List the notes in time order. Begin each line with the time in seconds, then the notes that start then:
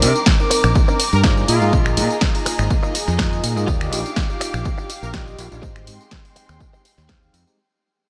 Already playing: A#5 D6
0.02 C3 C4 D4 D#4 A#4, open hi-hat, tambourine
0.15 tambourine
0.26 kick, snare, tambourine
0.39 C4 D#4 A#4, muted clean electric guitar stroke, tambourine
0.50 muted clean electric guitar stroke, open hi-hat, tambourine
0.64 A#1, finger snap, muted clean electric guitar stroke, tambourine
0.75 kick, tambourine
0.88 C4 D4 D#4 A#4, muted clean electric guitar stroke, tambourine
1.00 muted clean electric guitar stroke, open hi-hat, tambourine
1.13 G2 A#4, tambourine
1.24 A#3 D#4 F4 G#4 A#4 C5 D5, kick, snare, tambourine
1.37 tambourine
1.48 A#2 F4 G#4 A#4 D#5, open hi-hat, tambourine
1.61 G#2 A#3 D#4 F4 G#4, tambourine
1.73 A#1, kick, tambourine
1.86 finger snap, tambourine
1.97 A#2 A#3 D#4 F4 G#4, open hi-hat, tambourine
2.10 tambourine
2.21 kick, snare, tambourine
2.34 A#3 D#4 F4 G#4, muted clean electric guitar stroke, open hi-hat, tambourine
2.46 finger snap, muted clean electric guitar stroke, muted fingered electric bass stroke, open hi-hat, tambourine
2.59 G#1, finger snap, muted clean electric guitar stroke, tambourine
2.70 kick, tambourine
2.83 A#3 D#4 F4 G#4, muted clean electric guitar stroke, tambourine
2.94 muted clean electric guitar stroke, open hi-hat, tambourine
3.08 F2, snare, tambourine
3.19 A#3 D#4 F4 G#4 A#4 D#5, kick, snare, tambourine
3.33 tambourine
3.43 A#2, open hi-hat, tambourine
3.56 G#2 A#3 D#4 F4 G#4, tambourine
3.67 D#2 F4 G4 D5 D#5 F5 D6, kick, tambourine
3.81 finger snap, tambourine
3.92 A#1 D4 D#4 F4 G4, open hi-hat, tambourine
4.06 tambourine
4.16 kick, snare, tambourine
4.29 D#4 F4 G4, muted clean electric guitar stroke, tambourine
4.41 finger snap, muted clean electric guitar stroke, open hi-hat, tambourine
4.54 A#1, finger snap, muted clean electric guitar stroke, tambourine
4.65 kick, tambourine
4.78 D4 D#4 F4 G4, muted clean electric guitar stroke, tambourine
4.89 muted clean electric guitar stroke, open hi-hat, tambourine
5.02 A#1 A#4, tambourine
5.14 D#4 F4 G4 A#4 D5 D#5, kick, snare, tambourine
5.27 tambourine
5.38 A#1, open hi-hat, tambourine
5.51 A#1 D4 D#4 F4 G4, tambourine
5.62 G#1 G#3 G4 G#4 C5 D#5 G5 C6, kick, tambourine
5.76 finger snap, tambourine
5.87 G#2 G#3 C4 D#4 G4, open hi-hat, tambourine
6.01 tambourine
6.11 kick, snare, tambourine
6.24 G#3 C4 D#4 G5, muted clean electric guitar stroke, open hi-hat, tambourine
6.36 muted clean electric guitar stroke, muted fingered electric bass stroke, open hi-hat, tambourine
6.49 D#2, finger snap, muted clean electric guitar stroke, tambourine
6.60 kick, tambourine
6.73 G#3 C4 D#4 G4, muted clean electric guitar stroke, tambourine
6.84 muted clean electric guitar stroke, open hi-hat, tambourine
6.98 D#2, snare, tambourine
7.09 G#3 C4 D#4 G4 G#4 C5 F5 G5, kick, snare, tambourine
7.23 tambourine
7.33 F2, open hi-hat, tambourine
7.47 G#3 C4 D#4 G4, tambourine